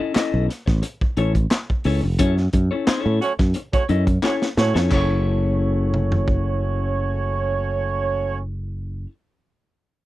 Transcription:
0.00 C#4 E4 A4 D#5
0.14 C#4 E4 A4 D#5, muted fingered electric bass stroke, snare, clap, closed hi-hat
0.34 B1
0.48 muted clean electric guitar stroke, snare, closed hi-hat
0.66 A1, muted clean electric guitar stroke, kick, snare
0.82 muted clean electric guitar stroke, closed hi-hat
1.01 kick
1.17 A1 C#4 E4 A4 C#5, closed hi-hat
1.35 muted clean electric guitar stroke, kick, closed hi-hat
1.51 muted clean electric guitar stroke, snare, clap, closed hi-hat
1.70 kick
1.84 C#2 C#4 E4 A4 C#5, open hi-hat
2.03 F1, muted clean electric guitar stroke
2.19 F#2 C#4 E4 A4 C#5, kick, closed hi-hat
2.37 muted clean electric guitar stroke, snare
2.53 F#2, muted clean electric guitar stroke, kick, closed hi-hat
2.71 C#4 E4 A4 C#5
2.87 C4 D#4 G#4 C5, muted fingered electric bass stroke, snare, clap, closed hi-hat
3.00 C#4 E4 A4 C#5
3.06 A2
3.21 A3 C#4 F#4 C#5, muted clean electric guitar stroke, closed hi-hat
3.39 F#2, muted clean electric guitar stroke, kick, snare
3.54 muted clean electric guitar stroke, closed hi-hat
3.73 A3 C#4 F#4 C#5, kick, closed hi-hat
3.89 F#2 C#4 E4 A4 D#5, closed hi-hat
4.07 muted clean electric guitar stroke, kick, closed hi-hat
4.22 A3 C#4 E4 F#4 A4 C#5, snare, clap
4.42 snare
4.57 A2 A3 C#4 F#4 C#5, muted clean electric guitar stroke, snare
4.74 F2 C#4 E4 A4 C#5, snare
4.89 F#1 A3 C#4 E4 F#4 A4 C#5, kick, clap, crash
4.94 C#5
5.94 mid tom
6.12 floor tom
6.28 kick

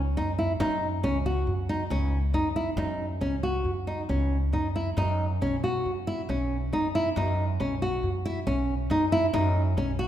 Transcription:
Already playing: C#2
0.17 F#2 D#4
0.39 E4
0.60 F#2 D#4
1.03 C#2 C#4
1.26 F#4
1.47 F#2
1.69 D#4
1.90 C#2 C#4
2.34 F#2 D#4
2.56 E4
2.77 F#2 D#4
3.21 C#2 C#4
3.43 F#4
3.64 F#2
3.87 D#4
4.09 C#2 C#4
4.53 F#2 D#4
4.76 E4
4.97 F#2 D#4
5.41 B1 C#4
5.64 F#4
5.86 F#2
6.07 E4
6.29 B1 C#4
6.72 F#2 D#4
6.95 E4
7.16 F#2 D#4
7.60 B1 C#4
7.82 F#4
8.03 F#2
8.25 E4
8.47 B1 C#4
8.90 F#2 D#4
9.12 E4
9.33 F#2 D#4
9.77 B1 C#4
9.99 F#4

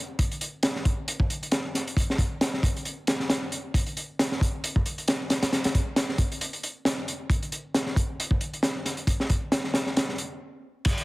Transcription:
0.19 kick, closed hi-hat
0.32 closed hi-hat
0.41 closed hi-hat
0.63 snare, closed hi-hat
0.76 snare
0.85 kick, closed hi-hat
1.08 closed hi-hat
1.20 kick
1.30 closed hi-hat
1.43 closed hi-hat
1.51 snare, closed hi-hat
1.75 snare, closed hi-hat
1.87 closed hi-hat
1.97 kick, closed hi-hat
2.10 snare
2.18 kick, closed hi-hat
2.41 snare, closed hi-hat
2.54 snare
2.63 kick, closed hi-hat
2.77 closed hi-hat
2.85 closed hi-hat
3.07 snare, closed hi-hat
3.20 snare
3.30 snare, closed hi-hat
3.52 closed hi-hat
3.74 kick, closed hi-hat
3.86 closed hi-hat
3.97 closed hi-hat
4.19 snare, closed hi-hat
4.32 snare
4.41 kick, closed hi-hat
4.64 closed hi-hat
4.76 kick
4.86 closed hi-hat
4.98 closed hi-hat
5.08 snare, closed hi-hat
5.30 snare, closed hi-hat
5.43 snare, closed hi-hat
5.52 snare, closed hi-hat
5.64 snare, closed hi-hat
5.75 kick, closed hi-hat
5.96 snare, closed hi-hat
6.09 snare
6.18 kick, closed hi-hat
6.32 closed hi-hat
6.41 closed hi-hat
6.53 closed hi-hat
6.63 closed hi-hat
6.85 snare, closed hi-hat
7.08 closed hi-hat
7.30 kick, closed hi-hat
7.43 closed hi-hat
7.52 closed hi-hat
7.74 snare, closed hi-hat
7.86 snare
7.96 kick, closed hi-hat
8.20 closed hi-hat
8.31 kick
8.41 closed hi-hat
8.54 closed hi-hat
8.63 snare, closed hi-hat
8.85 snare, closed hi-hat
8.97 closed hi-hat
9.07 kick, closed hi-hat
9.20 snare
9.30 kick, closed hi-hat
9.52 snare, closed hi-hat
9.64 snare
9.74 snare, closed hi-hat
9.87 snare
9.97 snare, closed hi-hat
10.09 snare
10.18 closed hi-hat
10.85 kick, closed hi-hat, crash
10.98 closed hi-hat

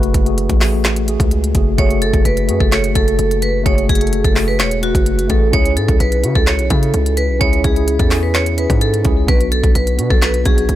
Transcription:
Already playing: F#1 A3 F#4 G#4 B4
0.03 closed hi-hat
0.14 F#1, kick, closed hi-hat
0.25 A3 F#4 G#4, closed hi-hat
0.38 closed hi-hat
0.50 A1, kick, closed hi-hat
0.60 A3 F#4 G#4, snare, clap, open hi-hat
0.85 snare, clap, closed hi-hat
0.96 closed hi-hat
1.06 A3 F#4 G#4, closed hi-hat
1.20 C#2, kick, closed hi-hat
1.31 closed hi-hat
1.44 closed hi-hat
1.54 F#1 A3 F#4 G#4, kick, closed hi-hat
1.77 F#1 A3 F#4 G#4 C#5, kick, closed hi-hat
1.91 closed hi-hat
2.02 A4, closed hi-hat
2.14 F#1, kick, closed hi-hat
2.25 F#1 B4, closed hi-hat
2.37 closed hi-hat
2.47 F#2 A3 F#4 G#4, closed hi-hat
2.60 F#1 A4, kick
2.72 C#5, snare, clap, closed hi-hat
2.84 closed hi-hat
2.94 F#1 A3 F#4 A4, kick, closed hi-hat
3.08 closed hi-hat
3.19 F#1, closed hi-hat
3.31 closed hi-hat
3.42 B4, closed hi-hat
3.64 F#1 A3 F#4 G#4 C#5, kick, closed hi-hat
3.78 closed hi-hat
3.89 F#1 G#4, kick, closed hi-hat
3.95 A3, closed hi-hat
4.01 F#4 A4, closed hi-hat
4.07 closed hi-hat
4.13 closed hi-hat
4.24 F#1 A4, kick, closed hi-hat
4.34 A3 F#4 G#4, snare, clap, open hi-hat
4.48 B4
4.60 E1 C#5, snare, clap, closed hi-hat
4.71 closed hi-hat
4.81 A3 F#4 B4, closed hi-hat
4.95 F#1, kick, closed hi-hat
5.06 closed hi-hat
5.19 closed hi-hat
5.28 A1 A3 F#4 G#4 A4, kick, closed hi-hat
5.51 C#2 C#4 E4 G#4 C#5, kick, closed hi-hat
5.65 closed hi-hat
5.77 G#2 A4, closed hi-hat
5.88 C#2, kick, closed hi-hat
6.00 B1 B4, closed hi-hat
6.12 closed hi-hat
6.22 C#3 C#4 E4 F#4, closed hi-hat
6.35 C#2 A4, kick
6.47 C#5, snare, clap, closed hi-hat
6.59 B1, closed hi-hat
6.70 C#3 C#4 E4 A4, kick, closed hi-hat
6.83 closed hi-hat
6.94 C#2, closed hi-hat
7.06 closed hi-hat
7.17 B4, closed hi-hat
7.29 B1
7.39 C#2 C#4 E4 G#4 C#5, kick, closed hi-hat
7.53 closed hi-hat
7.64 C#2 G#4, kick, closed hi-hat
7.75 C#4 E4 G#4, closed hi-hat
7.88 closed hi-hat
7.99 E2 A4, kick, closed hi-hat
8.09 C#4 E4 G#4, snare, clap, open hi-hat
8.23 B4
8.34 C#5, snare, clap, closed hi-hat
8.46 closed hi-hat
8.57 C#4 E4 G#4 B4, closed hi-hat
8.70 G#2, kick, closed hi-hat
8.81 A4, closed hi-hat
8.94 closed hi-hat
9.03 C#2 C#4 E4 G#4, kick, closed hi-hat
9.27 B1 B3 D4 F#4 B4, kick, closed hi-hat
9.41 closed hi-hat
9.52 A4, closed hi-hat
9.64 B1, kick, closed hi-hat
9.75 B1 B4, closed hi-hat
9.87 closed hi-hat
9.96 B2 B3 D4 F#4, closed hi-hat
10.10 B1 A4, kick
10.22 B4, snare, clap, closed hi-hat
10.34 closed hi-hat
10.44 B1 B3 D4 F#4 G#4, kick, closed hi-hat
10.58 closed hi-hat
10.69 B1, closed hi-hat

